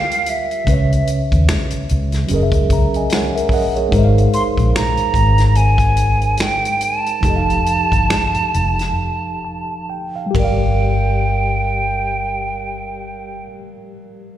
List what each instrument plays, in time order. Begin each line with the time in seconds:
Already playing: tine electric piano G3 F4 G4 A#4 D5, flute F5
0.11 closed hi-hat
0.26 flute E5, closed hi-hat
0.51 closed hi-hat
0.64 fingered electric bass C#2, tine electric piano C#3 C#4, kick, closed hi-hat
0.69 tine electric piano B4 C#5
0.74 tine electric piano E5
0.92 closed hi-hat
1.07 closed hi-hat
1.32 fingered electric bass D#2, kick, closed hi-hat
1.48 finger snap, snare, closed hi-hat
1.70 muted fingered electric bass stroke, closed hi-hat
1.89 fingered electric bass C#2, closed hi-hat
2.12 snare, closed hi-hat
2.27 fingered electric bass F#1, tine electric piano F#3 C#4, closed hi-hat
2.32 tine electric piano G#4 A#4
2.36 tine electric piano D#5
2.43 tine electric piano E5
2.52 fingered electric bass C#2, kick, closed hi-hat
2.70 tine electric piano E5 A#5, kick, closed hi-hat
2.94 tine electric piano D#5 G#5, closed hi-hat
3.10 tine electric piano F#5, finger snap, snare, closed hi-hat
3.14 tine electric piano C#5
3.35 tine electric piano A#4 E5, closed hi-hat
3.49 kick, open hi-hat
3.53 tine electric piano A#4 D#5 F#5
3.76 tine electric piano G#4 C#5, closed hi-hat
3.89 tine electric piano G#3 D#4, kick, closed hi-hat
3.93 fingered electric bass G#1, tine electric piano A#4 C5
3.98 tine electric piano E5
4.05 tine electric piano F5
4.18 closed hi-hat
4.33 flute C6, closed hi-hat
4.57 fingered electric bass A#1, kick, closed hi-hat
4.75 flute A#5, finger snap, snare, closed hi-hat
4.97 muted fingered electric bass stroke, closed hi-hat
5.14 fingered electric bass G#1, kick, closed hi-hat
5.38 snare, closed hi-hat
5.55 flute G#5, closed hi-hat
5.78 kick, closed hi-hat
5.97 closed hi-hat
6.22 closed hi-hat
6.37 finger snap, snare, closed hi-hat
6.42 flute G5
6.65 closed hi-hat
6.81 flute G#5, closed hi-hat
7.00 flute A5
7.06 closed hi-hat
7.21 fingered electric bass F1, tine electric piano F3 D#4, kick, closed hi-hat
7.25 tine electric piano G4 A4
7.30 tine electric piano D#5
7.36 tine electric piano F5
7.50 closed hi-hat
7.66 closed hi-hat
7.92 fingered electric bass G1, kick, closed hi-hat
8.10 finger snap, snare, closed hi-hat
8.34 muted fingered electric bass stroke, closed hi-hat
8.54 fingered electric bass F1, closed hi-hat
8.79 snare, closed hi-hat
9.45 tine electric piano A5
9.90 tine electric piano G5
10.16 tine electric piano F5
10.26 tine electric piano G3
10.31 tine electric piano G4, kick
10.35 fingered electric bass G1, tine electric piano A#4, flute G5, ride
10.40 tine electric piano D5
10.44 tine electric piano F5